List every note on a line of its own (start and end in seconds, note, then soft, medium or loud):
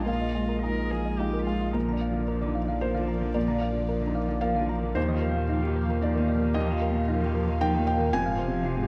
0.00 1.73 A#1 medium
0.00 0.24 F3 soft
0.00 0.10 G#3 soft
0.00 1.74 G#3 medium
0.00 0.10 D#4 soft
0.00 1.74 F4 medium
0.00 1.74 D#5 medium
0.00 0.10 G5 medium
0.06 1.70 A#2 soft
0.06 0.57 F4 soft
0.06 0.15 A#4 medium
0.06 1.16 F5 medium
0.22 0.30 D#5 medium
0.35 0.62 G#3 soft
0.35 0.44 D#5 medium
0.49 0.57 A#4 medium
0.63 0.89 G#3 soft
0.63 0.89 D#4 soft
0.63 0.89 F4 soft
0.63 0.93 A#4 medium
0.63 0.72 D#5 soft
0.78 0.86 D#5 soft
0.91 1.36 F3 soft
0.91 1.20 G#4 medium
0.91 1.00 A#4 medium
1.06 1.14 D#5 medium
1.19 1.44 G#3 soft
1.19 1.45 D#4 soft
1.19 1.45 F4 soft
1.19 1.46 G4 soft
1.19 1.28 D#5 medium
1.34 1.42 A#4 medium
1.47 1.74 G#3 soft
1.47 1.74 F4 soft
1.47 1.55 F5 soft
1.61 1.69 F5 soft
1.73 4.97 A#1 medium
1.73 3.31 A#2 soft
1.73 1.89 F3 soft
1.73 8.10 A#3 medium
1.73 4.93 F4 medium
1.73 2.77 A#4 medium
1.73 1.83 A#4 medium
1.73 4.93 D5 medium
1.88 2.03 D3 soft
1.88 1.97 A#5 medium
1.92 2.21 D4 soft
2.01 2.17 F3 soft
2.01 2.10 F5 medium
2.11 2.39 F3 soft
2.15 2.27 D3 soft
2.28 2.43 F3 soft
2.28 2.57 D4 soft
2.28 2.36 A#4 medium
2.42 2.57 D3 soft
2.42 2.50 D5 medium
2.46 2.64 D#4 soft
2.55 2.70 F3 soft
2.55 2.63 F5 medium
2.64 2.81 D3 soft
2.64 2.93 D4 soft
2.68 2.76 F5 medium
2.81 2.96 F3 soft
2.81 3.10 A#3 soft
2.81 2.90 A#4 medium
2.81 3.31 C5 medium
2.94 3.10 D3 soft
2.94 3.03 F5 medium
3.00 3.28 F3 soft
3.08 3.23 F3 soft
3.08 3.16 A#5 medium
3.18 3.34 D3 soft
3.18 3.46 A#3 soft
3.34 4.92 A#2 medium
3.34 3.49 F3 soft
3.34 3.43 A#4 medium
3.34 4.38 D5 medium
3.48 3.62 D3 soft
3.48 3.56 A#5 medium
3.54 3.82 D4 soft
3.61 3.77 F3 soft
3.61 3.70 F5 medium
3.72 3.88 D3 soft
3.72 4.00 F3 soft
3.89 4.02 F3 soft
3.89 4.18 D4 soft
3.89 3.97 A#4 medium
4.01 4.16 D3 soft
4.01 4.10 D5 medium
4.07 4.25 D#4 soft
4.15 4.30 F3 soft
4.15 4.23 F5 medium
4.25 4.41 D3 soft
4.25 4.54 D4 soft
4.25 4.37 F5 medium
4.41 4.57 F3 soft
4.41 4.72 A#3 soft
4.41 4.50 A#4 medium
4.41 4.92 F5 medium
4.55 4.71 D3 soft
4.55 4.64 F5 medium
4.62 4.90 F3 soft
4.69 4.84 F3 soft
4.69 4.77 A#5 medium
4.79 4.96 D3 soft
4.79 4.97 A#3 soft
4.95 8.15 D#2 medium
4.95 6.51 D#2 medium
4.95 5.11 F3 soft
4.95 5.04 D#4 medium
4.95 8.13 G4 medium
4.95 5.98 C5 medium
4.95 8.87 F5 medium
5.09 5.24 D#3 soft
5.09 5.17 D#5 medium
5.14 5.42 F4 soft
5.22 5.37 F3 soft
5.22 5.30 A#4 medium
5.31 5.60 A#2 soft
5.36 5.49 D#3 soft
5.49 5.64 F3 soft
5.49 5.57 D#4 medium
5.49 5.78 F4 soft
5.62 5.77 D#3 soft
5.62 5.71 G4 medium
5.68 5.85 G4 soft
5.76 5.91 F3 medium
5.76 5.84 A#4 medium
5.85 6.13 F4 soft
5.89 6.03 D#3 soft
5.89 5.98 A#4 medium
6.02 6.18 F3 medium
6.02 6.31 A#3 medium
6.02 6.10 D#4 medium
6.02 6.51 D5 medium
6.15 6.48 A#2 soft
6.15 6.33 D#3 soft
6.15 6.23 A#4 medium
6.28 6.46 F3 soft
6.28 6.36 D#5 medium
6.37 6.66 A#3 medium
6.44 6.56 D#3 medium
6.54 8.09 D#2 medium
6.54 6.71 F3 medium
6.54 6.63 D#4 medium
6.54 7.57 D#5 medium
6.68 6.85 D#3 medium
6.68 7.01 F4 medium
6.68 6.76 D#5 medium
6.82 6.97 F3 medium
6.82 6.90 A#4 medium
6.90 7.19 A#2 medium
6.96 7.09 D#3 medium
7.08 7.24 F3 medium
7.08 7.16 D#4 medium
7.08 7.37 F4 medium
7.22 7.36 D#3 medium
7.22 7.30 G4 medium
7.22 7.44 G4 medium
7.35 7.50 F3 medium
7.35 7.43 A#4 medium
7.43 7.71 F4 medium
7.48 7.61 D#3 medium
7.48 7.56 A#4 medium
7.61 7.77 F3 medium
7.61 7.89 A#3 medium
7.61 7.69 D#4 medium
7.61 7.85 G5 medium
7.74 7.90 D#3 medium
7.74 7.82 A#4 medium
7.79 8.07 A#2 medium
7.87 8.01 F3 medium
7.87 7.95 D#5 medium
7.87 8.11 G5 medium
7.97 8.13 D#3 medium
7.97 8.14 A#3 medium
8.13 8.87 F1 medium
8.13 8.27 F2 medium
8.13 8.87 F2 medium
8.13 8.87 C4 medium
8.13 8.21 F4 loud
8.13 8.87 F4 medium
8.13 8.87 G#5 loud
8.26 8.42 G#2 medium
8.26 8.34 F5 medium
8.31 8.59 F4 medium
8.39 8.55 C3 medium
8.39 8.47 C5 medium
8.48 8.76 C3 medium
8.53 8.66 F3 medium
8.65 8.79 C3 medium
8.65 8.73 F4 medium
8.65 8.87 F4 medium
8.78 8.87 G#2 medium
8.78 8.86 G#4 medium
8.83 8.87 G4 medium